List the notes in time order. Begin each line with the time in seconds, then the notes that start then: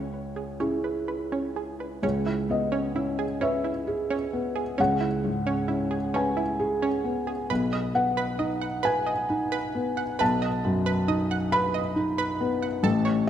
Already playing: C#2 C#5
0.36 G#4
0.60 C#4 E4 G#4
0.84 B4
1.08 B4
1.32 C#4
1.56 G#4
1.80 B4
2.03 C#2 C#4
2.26 E4
2.49 B3 D#5
2.72 C#4
2.95 C#4 E4
3.19 G#4
3.41 C#4 B4 E5
3.64 E4
3.87 G#4
4.10 C#4
4.33 B3
4.56 G#4
4.78 C#2 C#4 F#5
5.01 E4
5.24 G#2
5.47 C#4
5.68 C#4 E4
5.91 G#4
6.14 C#4 B4 G#5
6.37 E4
6.59 G#4
6.82 C#4
7.04 B3
7.27 G#4
7.50 B1 B4
7.73 D#5
7.94 B3 F#5
8.17 B4
8.39 D#4 D#5
8.61 F#5
8.83 B4 G#5
9.07 D#5
9.30 D#4
9.52 B4
9.75 B3
9.97 F#5
10.19 B1 B4 A5
10.42 D#5
10.65 F#2
10.86 B4
11.08 D#4 D#5
11.31 F#5
11.52 B4 B5
11.74 D#5
11.96 D#4
12.18 B4
12.41 B3
12.62 F#5
12.83 A1 A4
13.05 C#5